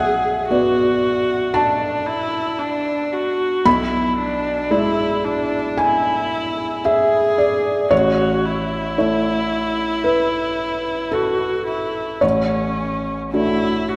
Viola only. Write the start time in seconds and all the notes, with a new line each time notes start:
Already playing: G#4
0.49 F#4
1.54 D4
2.06 E4
2.59 D4
3.12 F#4
3.66 E4
4.19 D4
4.71 E4
5.24 D4
5.78 E4
6.85 G#4
7.92 F#4
8.45 E4
11.14 F#4
11.67 E4
12.23 C#4
13.33 E4
13.88 F#4